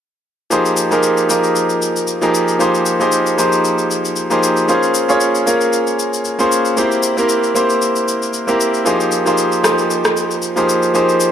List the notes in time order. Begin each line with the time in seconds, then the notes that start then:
0.50 F3 A#3 D#4 G4 G#4 C5, shaker
0.65 shaker
0.77 shaker
0.91 F3 A#3 D#4 G4 G#4 A#4, shaker
1.03 shaker
1.17 shaker
1.29 F3 A#3 D#4 G4 G#4 A#4, shaker
1.44 shaker
1.56 shaker
1.70 shaker
1.82 shaker
1.96 shaker
2.07 shaker
2.22 F3 A#3 D#4 G4 G#4 A#4, shaker
2.34 shaker
2.48 shaker
2.59 F3 A#3 D#4 G4 G#4 C5, shaker
2.75 shaker
2.86 shaker
3.00 F3 A#3 D#4 G4 G#4 C5, shaker
3.12 shaker
3.26 shaker
3.38 F3 A#3 D#4 G4 G#4 C5, shaker
3.52 shaker
3.64 shaker
3.78 shaker
3.91 shaker
4.05 shaker
4.16 shaker
4.30 F3 A#3 D#4 G4 G#4 C5, shaker
4.43 shaker
4.57 shaker
4.68 A#3 C#4 F4 G#4 C5, shaker
4.83 shaker
4.94 shaker
5.08 A#3 C#4 F4 G#4 C#5, shaker
5.20 shaker
5.35 shaker
5.46 A#3 C#4 F4 G#4 A#4, shaker
5.61 shaker
5.73 shaker
5.87 shaker
5.99 shaker
6.13 shaker
6.25 shaker
6.39 A#3 C#4 F4 G#4 C5, shaker
6.52 shaker
6.65 shaker
6.77 A#3 C4 E4 G4 C5, shaker
6.92 shaker
7.03 shaker
7.17 A#3 C4 E4 G4 A#4, shaker
7.29 shaker
7.43 shaker
7.55 A#3 C4 E4 G4 C5, shaker
7.70 shaker
7.82 shaker
7.96 shaker
8.08 shaker
8.22 shaker
8.33 shaker
8.47 A#3 C4 E4 G4 A#4, shaker
8.60 shaker
8.74 shaker
8.85 F3 A#3 D#4 G4 G#4 C5, shaker
9.00 shaker
9.11 shaker
9.26 F3 A#3 D#4 G4 G#4 C5, shaker
9.38 shaker
9.52 shaker
9.63 F3 A#3 D#4 G4 G#4 C5, cross-stick, shaker
9.78 shaker
9.90 shaker
10.04 cross-stick, shaker
10.17 shaker
10.31 shaker
10.42 shaker
10.56 F3 A#3 D#4 G4 G#4 C5, shaker
10.69 shaker
10.83 shaker
10.94 F3 A#3 D#4 G4 G#4 C5, shaker
11.09 shaker
11.20 shaker